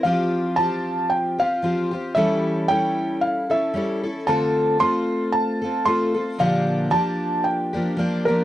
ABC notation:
X:1
M:4/4
L:1/8
Q:"Swing" 1/4=114
K:Dm
V:1 name="Felt piano"
f2 a2 g f2 z | e2 g2 f e2 z | a2 c'2 a2 c'2 | f2 a2 g3 B |]
V:2 name="Twelve-string acoustic guitar"
[F,CFG]2 [F,CFG]3 [CFG] [F,CFG] [CFG] | [E,G,^CEA]2 [G,CEA]3 [CEA] [G,CEA] [CEA] | [D,A,CFA]2 [A,CFA]3 [CFA] [A,CFA] [CFA] | [B,,D,F,B,DG]2 [F,B,DG]3 [F,B,DG] [F,B,DG] [F,B,DG] |]